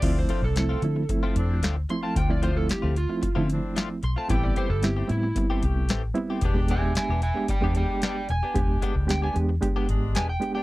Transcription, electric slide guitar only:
\new Staff \with { instrumentName = "Electric slide guitar" } { \time 4/4 \key d \dorian \tempo 4 = 113 d''16 c''8 a'16 a'2 r8 c'''16 a''16 | g''16 d''16 c''16 a'16 g'8 f'4 r4 c'''16 a''16 | g''16 d''16 c''16 a'16 g'8 e'4 r4. | r8 <e'' gis''>8 <e'' gis''>8 <e'' gis''>8 <d'' g''>8 <d'' g''>8 <d'' g''>8 gis''8~ |
gis''8 r8 g''16 gis''16 r4. gis''16 g''8 g''16 | }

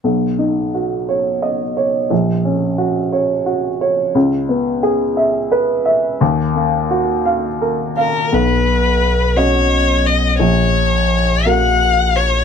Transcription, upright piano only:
\new Staff \with { instrumentName = "Upright piano" } { \time 6/8 \key b \lydian \tempo 4. = 58 b,,8 dis'8 fis'8 cis''8 dis''8 cis''8 | ais,,8 cis'8 fis'8 cis''8 fis'8 cis''8 | cis,8 b8 gis'8 e''8 b'8 e''8 | dis,8 ais8 fis'8 eis''8 ais'8 eis''8 |
b,,4. <cis' fis' dis''>4. | ais,,4. <ais fis' ais'>4. | }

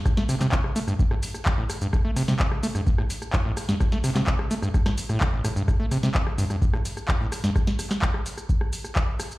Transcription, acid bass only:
\new Staff \with { instrumentName = "Acid bass" } { \clef bass \time 4/4 \key a \minor \tempo 4 = 128 a,16 a16 c16 c16 r8 a16 g,16 g,16 a,16 r8 g,16 a,16 r16 g,16 | a,16 a16 c16 c16 r8 a16 g,16 g,16 a,16 r8 g,16 a,16 r16 g,16 | a,16 a16 c16 c16 r8 a16 g,16 g,16 a,16 r16 a,16 d16 a,,16 a,16 g,16 | a,16 a16 c16 c16 r8 g,16 g,16 g,16 a,16 r8 g,16 a,16 r16 g,16 |
r1 | }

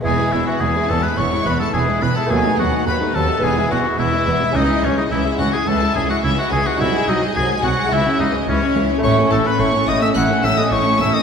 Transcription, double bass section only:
\new Staff \with { instrumentName = "Double bass section" } { \clef bass \time 4/4 \key e \major \tempo 4 = 107 e,,8 e,,8 e,,8 e,,8 e,,8 e,,8 e,,8 e,,8 | dis,8 dis,8 dis,8 dis,8 e,,8 e,,8 e,,8 e,,8 | cis,8 cis,8 cis,8 cis,8 cis,8 cis,8 cis,8 cis,8 | bis,,8 bis,,8 bis,,8 bis,,8 cis,8 cis,8 cis,8 cis,8 |
a,,8 a,,8 a,,8 a,,8 a,,8 a,,8 a,,8 a,,8 | }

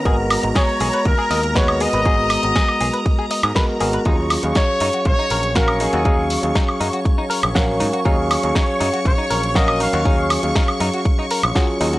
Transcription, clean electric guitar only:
\new Staff \with { instrumentName = "Clean electric guitar" } { \time 4/4 \key ees \minor \tempo 4 = 120 aes'16 r8. aes'16 r16 aes'16 ces''16 r16 aes'16 ees''16 r16 ces''16 r16 aes'16 ces''16 | aes'16 r8. aes'16 r16 aes'16 ces''16 r16 aes'16 ees''16 r16 ces''16 r16 aes'16 ces''16 | ees'16 r8. ees'16 r16 ees'16 ges'16 r16 ees'16 bes'16 r16 ges'16 r16 ees'16 ges'16 | ees'16 r8. ees'16 r16 ees'16 ges'16 r16 ees'16 bes'16 r16 ges'16 r16 ees'16 ges'16 |
ees'16 r8. ees'16 r16 ees'16 ges'16 r16 ees'16 bes'16 r16 ges'16 r16 ees'16 ges'16 | ees'16 r8. ees'16 r16 ees'16 ges'16 r16 ees'16 bes'16 r16 ges'16 r16 ees'16 ges'16 | }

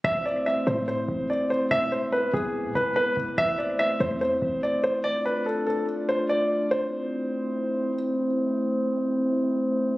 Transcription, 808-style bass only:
\new Staff \with { instrumentName = "808-style bass" } { \clef bass \time 4/4 \key a \minor \tempo 4 = 144 a,,4. a,4 a,,4. | e,,4. b,,8. b,16 e,,4 e,,8 | a,,4. e,4 a,,4. | r1 |
r1 | r1 | }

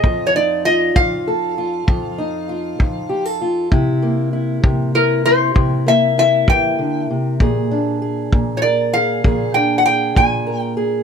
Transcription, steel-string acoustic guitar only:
\new Staff \with { instrumentName = "Steel-string acoustic guitar" } { \time 12/8 \key c \dorian \tempo 4. = 65 << { f'8 ees'8 f'4 a'8 f'8 f'8 ees'8 f'4 g'16 a'16 f'8 | e'8 bes8 e'4 e'8 e'8 e'8 bes8 e'2 | aes'8 d'8 aes'4 bes'8 aes'8 aes'8 d'8 aes'4 bes'8 aes'8 | } \\ { f,4. f,4. f,4. f,4. | c4. c4. c4. e8 d8 c8 | bes,4. bes,4. bes,4. bes,4. | } >> }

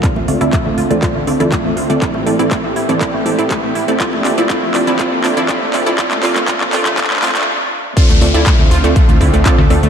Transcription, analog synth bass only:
\new Staff \with { instrumentName = "Analog synth bass" } { \clef bass \time 4/4 \key d \minor \tempo 4 = 121 r16 d,16 d,16 d,16 r16 d,16 d,16 d,16 r16 d,16 d,16 d,16 r16 e,16 d,16 d,16 | r16 a,,16 a,,16 a,,16 r16 a,,16 a,,16 a,,16 r16 a,,16 a,,16 a,,16 r16 bes,,16 a,,16 a,,16 | r16 g,,16 g,,16 g,,16 r16 g,,16 g,,16 g,,16 r16 g,,16 g,,16 g,,16 r16 a,,16 g,,16 g,,16 | r16 bes,,16 bes,,16 bes,,16 r16 bes,,16 bes,,16 bes,,16 r16 bes,,16 bes,,16 bes,,16 r4 |
r16 d,16 d,16 d,16 r16 d,16 d,16 d,16 r16 d,16 d,16 d,16 r16 d,16 d,16 d,16 | }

